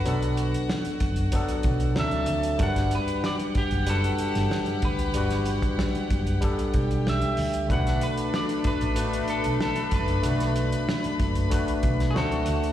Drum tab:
HH |xxxx-xxxxxxx-xxx|xxxx-xxxxxxx-xxx|xxxx-xxxxxxx-xox|xxxx-xxxxxxx-xxx|
SD |----o-------o---|-o--o------oo---|-o--o-------o---|-o--o-------o---|
BD |------o-o-o-----|o-----o-------o-|---o--o-o-o-----|o-----o-------o-|

HH |xxxx-xxxxxxx-xxx|
SD |-o--o------oo---|
BD |------o-o-o-----|